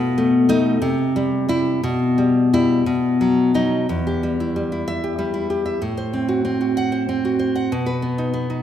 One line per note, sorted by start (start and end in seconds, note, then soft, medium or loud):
0.00 0.79 B2 loud
0.18 0.48 A3 medium
0.49 0.78 A3 medium
0.49 0.78 D#4 loud
0.82 1.81 C3 medium
1.16 1.47 G3 medium
1.49 1.80 G3 medium
1.49 1.80 E4 medium
1.83 2.84 B2 medium
2.18 2.52 G3 medium
2.53 2.84 G3 medium
2.53 2.84 E4 medium
2.86 3.85 B2 medium
3.21 3.53 F#3 medium
3.54 3.85 F#3 medium
3.54 3.86 D#4 medium
3.89 5.78 E2 medium
4.07 4.87 G4 medium
4.23 4.55 G3 medium
4.40 4.71 E4 medium
4.56 5.03 G3 medium
4.72 5.32 E4 medium
4.88 5.12 E5 medium
5.04 5.49 G4 medium
5.19 5.81 G3 medium
5.34 5.65 E4 medium
5.50 5.82 G4 medium
5.66 5.82 E5 medium
5.82 7.68 A2 medium
5.97 6.91 C5 medium
6.13 6.44 C4 medium
6.28 6.60 F#4 medium
6.45 7.07 C4 medium
6.61 7.24 F#4 medium
6.77 7.02 F#5 medium
6.92 7.38 C5 medium
7.09 7.72 C4 medium
7.25 7.72 F#4 medium
7.39 7.71 C5 medium
7.55 7.72 F#5 medium
7.72 8.62 B2 medium
7.86 8.62 B4 medium
8.02 8.32 B3 medium
8.18 8.49 D#4 medium
8.34 8.62 B3 medium
8.50 8.62 D#4 medium